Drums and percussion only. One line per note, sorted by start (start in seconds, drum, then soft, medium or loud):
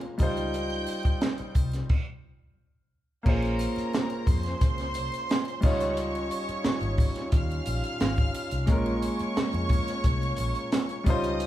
0.01 muted triangle soft
0.19 kick loud
0.19 closed hi-hat medium
0.19 triangle medium
0.37 closed hi-hat medium
0.37 muted triangle soft
0.54 closed hi-hat medium
0.54 muted triangle medium
0.70 muted triangle medium
0.87 closed hi-hat medium
0.87 triangle medium
1.03 kick medium
1.03 closed hi-hat soft
1.03 muted triangle soft
1.21 snare loud
1.21 closed hi-hat medium
1.21 muted triangle soft
1.38 closed hi-hat soft
1.38 muted triangle soft
1.55 kick medium
1.55 closed hi-hat medium
1.55 triangle medium
1.72 snare soft
1.72 closed hi-hat medium
1.72 muted triangle soft
1.89 kick loud
1.89 crash medium
3.26 kick loud
3.26 crash loud
3.26 muted triangle medium
3.43 closed hi-hat soft
3.43 muted triangle medium
3.59 closed hi-hat medium
3.59 triangle medium
3.76 closed hi-hat medium
3.76 muted triangle soft
3.93 snare loud
3.93 closed hi-hat medium
3.93 muted triangle soft
4.10 closed hi-hat soft
4.10 muted triangle soft
4.27 kick medium
4.27 open hi-hat medium
4.27 triangle medium
4.43 snare soft
4.43 closed hi-hat medium
4.43 muted triangle medium
4.61 kick medium
4.61 closed hi-hat medium
4.61 muted triangle medium
4.78 snare soft
4.78 closed hi-hat soft
4.78 muted triangle medium
4.94 closed hi-hat medium
4.94 triangle medium
5.12 closed hi-hat medium
5.12 muted triangle medium
5.29 snare loud
5.29 closed hi-hat medium
5.29 muted triangle soft
5.45 closed hi-hat soft
5.45 muted triangle soft
5.62 kick loud
5.62 crash medium
5.62 triangle medium
5.80 closed hi-hat medium
5.80 muted triangle soft
5.97 closed hi-hat medium
5.97 muted triangle medium
6.15 closed hi-hat soft
6.15 muted triangle medium
6.31 closed hi-hat medium
6.31 triangle medium
6.49 closed hi-hat medium
6.49 muted triangle soft
6.64 snare loud
6.64 closed hi-hat medium
6.64 muted triangle soft
6.81 closed hi-hat soft
6.81 muted triangle soft
6.98 kick medium
6.98 open hi-hat medium
6.98 triangle medium
7.16 snare soft
7.16 closed hi-hat medium
7.16 muted triangle soft
7.32 kick medium
7.32 closed hi-hat loud
7.32 muted triangle medium
7.50 closed hi-hat soft
7.50 muted triangle soft
7.66 closed hi-hat medium
7.66 triangle medium
7.84 closed hi-hat soft
7.84 muted triangle medium
8.00 snare loud
8.00 closed hi-hat medium
8.00 muted triangle medium
8.17 kick medium
8.17 closed hi-hat soft
8.17 muted triangle soft
8.34 closed hi-hat medium
8.34 triangle medium
8.51 closed hi-hat medium
8.51 muted triangle soft
8.67 kick loud
8.67 closed hi-hat medium
8.67 muted triangle medium
8.86 muted triangle medium
9.02 closed hi-hat medium
9.02 triangle medium
9.19 closed hi-hat soft
9.19 muted triangle soft
9.37 snare loud
9.37 closed hi-hat medium
9.37 muted triangle medium
9.53 closed hi-hat soft
9.53 muted triangle soft
9.69 kick loud
9.69 closed hi-hat medium
9.69 triangle medium
9.88 snare soft
9.88 closed hi-hat medium
9.88 muted triangle medium
10.04 kick medium
10.04 closed hi-hat loud
10.04 muted triangle medium
10.22 closed hi-hat soft
10.22 muted triangle medium
10.36 closed hi-hat medium
10.36 triangle medium
10.55 closed hi-hat soft
10.55 muted triangle medium
10.72 snare loud
10.72 closed hi-hat loud
10.72 muted triangle soft
10.89 closed hi-hat soft
10.89 muted triangle soft
11.06 kick loud
11.06 closed hi-hat medium
11.06 triangle medium
11.24 closed hi-hat medium
11.24 muted triangle soft
11.40 closed hi-hat medium
11.40 muted triangle medium